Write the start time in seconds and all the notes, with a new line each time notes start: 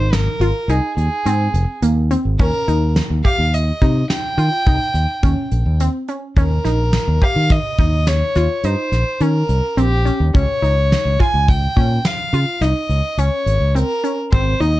Already playing: G#1 D#4 C5
0.13 A#4, snare, closed hi-hat
0.40 G#1 F4, closed hi-hat
0.68 C2 D#4 G#4, closed hi-hat
0.97 D#2 G#4, closed hi-hat
1.25 G#2 C4, closed hi-hat
1.54 F1, closed hi-hat
1.82 D#2 A#3, closed hi-hat
2.11 C4, closed hi-hat
2.25 G#1
2.39 D#2 C#4 A#4, kick, closed hi-hat
2.68 D#2 D#4, closed hi-hat
2.96 snare, closed hi-hat
3.10 D#2
3.25 G4 F5, kick, closed hi-hat
3.39 D#2
3.53 D#5, closed hi-hat
3.82 C3 D#4, kick, snare, closed hi-hat
4.10 G5, snare, closed hi-hat
4.37 D#3 F4, closed hi-hat
4.67 C2 D#4, kick, closed hi-hat
4.94 D#2, closed hi-hat
5.23 D#2 C#4, kick, closed hi-hat
5.51 A#1, closed hi-hat
5.66 D#2
5.80 C4, closed hi-hat
6.08 C#4, closed hi-hat
6.36 D#2 C#4 A#4, kick, closed hi-hat
6.65 A#1 D#4, snare, closed hi-hat
6.93 snare, closed hi-hat
7.08 D#2
7.21 G4 F5, kick, closed hi-hat
7.36 D#3
7.50 D#5, kick, closed hi-hat
7.78 D#2 D#4, kick, closed hi-hat
8.07 C#5, snare, closed hi-hat
8.35 D#2 F4, snare, closed hi-hat
8.64 G2 D#4 C5, closed hi-hat
8.92 A#1, snare, closed hi-hat
9.20 D#3 C#4 A#4, closed hi-hat
9.49 C2, closed hi-hat
9.77 A#1 C4 G4, closed hi-hat
10.05 C#4, closed hi-hat
10.20 D#2
10.34 C#2 C#4 C#5, kick, closed hi-hat
10.62 C#2 D#4, closed hi-hat
10.92 snare, closed hi-hat
11.05 C#2
11.20 F4 G#5, kick, closed hi-hat
11.34 C#2
11.48 G5, kick, closed hi-hat
11.76 A#2 C#4, kick, closed hi-hat
12.05 F5, snare, closed hi-hat
12.33 C#3 F4, closed hi-hat
12.61 C2 D#4 D#5, snare, closed hi-hat
12.89 C#2, closed hi-hat
13.18 C#2 C#4 C#5, closed hi-hat
13.46 G#1, closed hi-hat
13.60 C#2
13.75 C4 A#4, closed hi-hat
14.04 C#4, closed hi-hat
14.32 G#1 C4 C5, kick, closed hi-hat
14.60 D#2 D#4 D#5, closed hi-hat